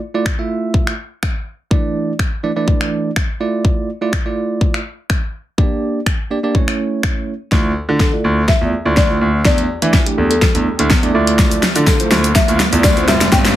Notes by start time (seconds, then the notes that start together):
0.14 A3 E4 F4 D5
0.26 finger snap, kick
0.38 A3 E4 F4 E5
0.74 kick
0.87 finger snap
1.23 finger snap, kick
1.71 E3 A3 D4 E4 D5, kick
2.19 finger snap, kick
2.43 E3 A3 D4 E4 D5
2.56 E3 A3 D4 E4 D5
2.68 kick
2.81 finger snap
3.16 finger snap, kick
3.40 A3 E4 F4 D5
3.65 kick
4.01 A3 E4 F4 D5
4.13 finger snap, kick
4.25 A3 E4 F4 D5
4.61 kick
4.74 finger snap
5.10 finger snap, kick
5.58 A#3 D4 G4 D5, kick
6.06 finger snap, kick
6.31 A#3 D4 G4 D5
6.43 A#3 D4 G4 D5
6.55 A3 C#4 E4 C#5, kick
6.68 finger snap
7.03 finger snap, kick
7.51 D2 A3 E4 F4 D5, kick, snare, riser
7.88 D3 A3 E4 F4 D5
8.00 A4, kick, snare
8.13 A3 E4 F4 D5
8.24 D2
8.48 E5, kick, snare
8.61 E2 A3 E4 F4 D5
8.85 D2 A3 E4 F4 D5
8.97 D2 D5, kick, snare
9.09 A3 E4 F4 D5
9.21 D2
9.45 E2 A3 D4 E4 D5, kick, snare
9.58 closed hi-hat
9.82 E3 A3 D4 E4 D5, closed hi-hat
9.93 kick, snare
10.06 A3 D4 E4 G4, closed hi-hat
10.18 E2 A4
10.30 A4, closed hi-hat
10.42 kick, snare
10.55 E2 A3 D4 E4 A4, closed hi-hat
10.79 D2 A3 D4 E4 A4, closed hi-hat
10.90 E2, kick, snare
11.03 A3 D4 E4 D5, closed hi-hat
11.14 D2 A3 E4 F4 D5
11.27 closed hi-hat
11.39 kick, snare, tambourine, shaker
11.51 closed hi-hat, shaker
11.63 snare, tambourine, shaker
11.76 D3 A3 E4 F4 D5, closed hi-hat, shaker
11.87 A4, kick, snare, tambourine, shaker
12.00 A3 E4 F4 C5, closed hi-hat, shaker
12.11 D2, snare, tambourine, shaker
12.24 closed hi-hat, shaker
12.35 E5, kick, snare, shaker
12.48 D2 A3 E4 F4 F5, closed hi-hat, shaker
12.60 snare, shaker
12.72 E2 A3 E4 F4 D5, closed hi-hat, shaker
12.84 D2 D5, kick, snare, tambourine, shaker
12.97 A3 E4 F4 C5, closed hi-hat, shaker
13.08 F1 E5, snare, tambourine, shaker
13.21 snare, closed hi-hat, shaker
13.32 G1 A#3 D4 G4 D5 G5, kick, snare, tambourine, shaker
13.45 snare, closed hi-hat, shaker